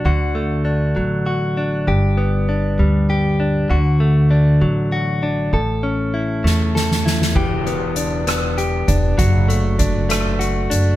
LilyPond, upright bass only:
\new Staff \with { instrumentName = "Upright bass" } { \clef bass \time 6/8 \key d \major \tempo 4. = 66 d,4. a,,4. | g,,4. d,4. | d,4. a,,4. | a,,4. e,4. |
e,,2~ e,,8 e,,8 | fis,,2~ fis,,8 fis,,8 | }